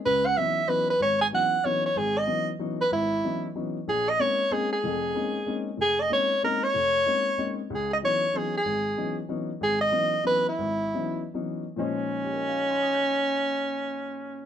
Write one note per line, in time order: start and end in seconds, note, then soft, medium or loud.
0.05 0.33 C#2 medium
0.05 0.33 C#3 medium
0.05 0.27 B4 loud
0.26 0.39 F#5 loud
0.37 0.58 E3 medium
0.37 0.58 F#3 soft
0.37 0.59 B3 soft
0.37 0.59 C#4 soft
0.37 0.59 D#4 medium
0.37 0.70 E5 medium
0.67 0.89 E3 medium
0.67 0.89 F#3 medium
0.67 0.89 B3 soft
0.67 0.90 C#4 soft
0.67 0.90 D#4 medium
0.67 0.89 B4 medium
0.90 1.01 B4 medium
1.00 1.28 G#1 medium
1.00 1.20 C#5 loud
1.21 1.27 G#5 loud
1.32 1.53 E3 medium
1.32 1.53 F#3 soft
1.32 1.54 B3 soft
1.32 1.54 C#4 soft
1.32 1.54 D#4 medium
1.32 1.67 F#5 loud
1.65 1.86 E3 medium
1.65 1.86 F#3 soft
1.65 1.86 B3 medium
1.65 1.86 C#4 soft
1.65 1.86 D#4 medium
1.65 1.85 C#5 medium
1.86 1.99 C#5 medium
1.96 2.23 G#1 medium
1.96 2.19 G#4 medium
2.18 2.49 D#5 medium
2.27 2.48 E3 medium
2.27 2.49 F#3 soft
2.27 2.48 B3 medium
2.27 2.49 C#4 soft
2.27 2.49 D#4 medium
2.59 2.81 E3 medium
2.59 2.81 F#3 medium
2.59 2.81 B3 soft
2.59 2.81 C#4 soft
2.59 2.81 D#4 medium
2.81 2.92 B4 medium
2.92 3.19 G#1 medium
2.92 3.52 E4 medium
3.24 3.45 E3 medium
3.24 3.45 F#3 medium
3.24 3.45 B3 soft
3.24 3.45 C#4 soft
3.24 3.45 D#4 medium
3.55 3.76 E3 medium
3.55 3.76 F#3 medium
3.55 3.76 B3 soft
3.55 3.77 C#4 soft
3.55 3.77 D#4 medium
3.88 4.15 A#1 medium
3.88 4.11 G#4 medium
4.09 4.22 D#5 loud
4.19 4.40 G#3 medium
4.19 4.40 A#3 medium
4.19 4.40 C4 soft
4.19 4.40 C#4 soft
4.19 4.40 D#4 medium
4.19 4.54 C#5 loud
4.51 4.72 G#3 medium
4.51 4.72 A#3 medium
4.51 4.72 C4 soft
4.51 4.72 C#4 medium
4.51 4.72 D#4 medium
4.51 4.72 G#4 medium
4.72 5.63 G#4 medium
4.83 5.10 F1 medium
4.83 5.10 F2 medium
5.15 5.36 G#3 medium
5.15 5.36 A#3 soft
5.15 5.36 C4 soft
5.15 5.36 C#4 medium
5.15 5.36 D#4 medium
5.46 5.67 G#3 medium
5.46 5.67 A#3 soft
5.46 5.67 C4 soft
5.46 5.68 C#4 medium
5.46 5.68 D#4 medium
5.77 6.05 F1 medium
5.77 6.03 G#4 loud
6.01 6.11 D#5 medium
6.10 6.31 G#3 medium
6.10 6.31 A#3 soft
6.10 6.31 C4 soft
6.10 6.31 C#4 soft
6.10 6.31 D#4 medium
6.10 6.41 C#5 medium
6.43 6.63 G#3 medium
6.43 6.63 A#3 medium
6.43 6.64 C4 medium
6.43 6.64 C#4 soft
6.43 6.64 D#4 medium
6.43 6.65 A#4 medium
6.63 7.58 C#5 loud
6.74 7.01 F1 medium
7.06 7.26 G#3 medium
7.06 7.27 A#3 soft
7.06 7.27 C4 medium
7.06 7.27 C#4 soft
7.06 7.27 D#4 medium
7.38 7.59 G#3 medium
7.38 7.59 A#3 soft
7.38 7.59 C4 soft
7.38 7.59 C#4 soft
7.38 7.59 D#4 medium
7.70 7.97 C#2 medium
7.70 7.97 C#3 medium
7.75 7.90 G#4 medium
7.93 7.98 D#5 medium
8.02 8.22 E3 medium
8.02 8.22 F#3 soft
8.02 8.23 B3 soft
8.02 8.23 C#4 soft
8.02 8.23 D#4 medium
8.02 8.39 C#5 medium
8.33 8.54 E3 medium
8.33 8.54 F#3 soft
8.33 8.54 B3 soft
8.33 8.54 C#4 medium
8.33 8.54 D#4 medium
8.33 8.55 G#4 medium
8.57 9.18 G#4 medium
8.65 8.92 G#1 medium
8.97 9.18 E3 medium
8.97 9.18 F#3 soft
8.97 9.18 B3 soft
8.97 9.18 C#4 soft
8.97 9.18 D#4 medium
9.28 9.49 E3 medium
9.28 9.49 F#3 medium
9.28 9.49 B3 medium
9.28 9.49 C#4 medium
9.28 9.50 D#4 medium
9.61 9.88 G#1 medium
9.61 9.80 G#4 loud
9.81 10.22 D#5 loud
9.92 10.13 E3 medium
9.92 10.13 F#3 soft
9.92 10.13 B3 soft
9.92 10.13 C#4 medium
9.92 10.14 D#4 medium
10.24 10.47 E3 medium
10.24 10.47 F#3 soft
10.24 10.47 B3 soft
10.24 10.47 C#4 soft
10.24 10.47 D#4 medium
10.24 10.45 B4 loud
10.49 11.32 E4 medium
10.59 10.90 G#1 medium
10.94 11.20 E3 medium
10.94 11.21 F#3 soft
10.94 11.21 B3 medium
10.94 11.21 C#4 soft
10.94 11.20 D#4 medium
11.34 11.62 E3 soft
11.34 11.63 F#3 soft
11.34 11.63 B3 soft
11.34 11.62 C#4 soft
11.34 11.63 D#4 medium
11.76 14.46 A#2 medium
11.76 14.46 F3 medium
11.76 14.46 G#3 medium
11.76 14.46 C#4 medium
11.76 14.46 D#4 medium
11.76 14.46 C5 medium
12.24 14.46 G4 soft
12.32 14.46 A#4 soft
12.40 14.46 C#5 soft
12.49 14.46 F5 soft
12.59 14.46 G#5 soft
12.70 14.46 C6 soft
12.82 14.46 D#6 soft
12.94 14.46 G6 soft